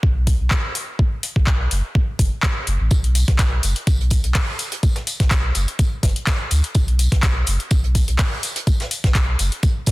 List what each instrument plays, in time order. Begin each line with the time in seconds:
0.03 sub bass B1, kick
0.27 kick, open hi-hat
0.40 sub bass B1
0.51 kick, clap
0.75 open hi-hat
0.99 kick
1.23 open hi-hat
1.36 sub bass B1, kick
1.47 kick, clap
1.71 sub bass F#1, open hi-hat
1.95 kick
2.19 sub bass F#1, kick, open hi-hat
2.43 kick, clap
2.67 sub bass F#1, open hi-hat
2.80 sub bass A1
2.91 sub bass B1, kick, closed hi-hat, tambourine
3.04 closed hi-hat
3.15 open hi-hat, tambourine
3.28 sub bass B1, kick, snare, closed hi-hat
3.39 kick, snare, clap, closed hi-hat, tambourine
3.63 sub bass F#1, open hi-hat, tambourine
3.76 closed hi-hat
3.87 sub bass B1, kick, closed hi-hat, tambourine
4.01 closed hi-hat
4.10 kick, open hi-hat, tambourine
4.24 sub bass B1, closed hi-hat
4.35 kick, snare, clap, closed hi-hat, open hi-hat
4.59 open hi-hat, tambourine
4.72 closed hi-hat
4.83 kick, closed hi-hat, tambourine
4.96 snare, closed hi-hat
5.07 open hi-hat, tambourine
5.20 sub bass B1, kick, snare, closed hi-hat
5.31 kick, snare, clap, closed hi-hat, tambourine
5.55 sub bass F#1, open hi-hat, tambourine
5.68 closed hi-hat
5.79 kick, closed hi-hat, tambourine
6.03 sub bass F#1, kick, snare, open hi-hat, tambourine
6.16 closed hi-hat
6.27 kick, snare, clap, closed hi-hat, tambourine
6.51 sub bass D2, open hi-hat, tambourine
6.64 closed hi-hat
6.74 sub bass B1, kick, closed hi-hat, tambourine
6.88 closed hi-hat
6.99 open hi-hat, tambourine
7.12 sub bass B1, kick, snare, closed hi-hat
7.23 kick, snare, clap, closed hi-hat, tambourine
7.46 sub bass F#1, open hi-hat, tambourine
7.60 closed hi-hat
7.71 sub bass B1, kick, closed hi-hat, tambourine
7.84 closed hi-hat
7.95 kick, open hi-hat, tambourine
8.08 sub bass B1, closed hi-hat
8.19 kick, snare, clap, closed hi-hat, open hi-hat
8.43 open hi-hat, tambourine
8.56 closed hi-hat
8.67 kick, closed hi-hat, tambourine
8.80 snare, closed hi-hat
8.91 open hi-hat, tambourine
9.04 sub bass B1, kick, snare, closed hi-hat
9.15 kick, snare, clap, closed hi-hat, tambourine
9.39 sub bass F#1, open hi-hat, tambourine
9.52 closed hi-hat
9.63 kick, closed hi-hat, tambourine
9.86 kick, snare, open hi-hat, tambourine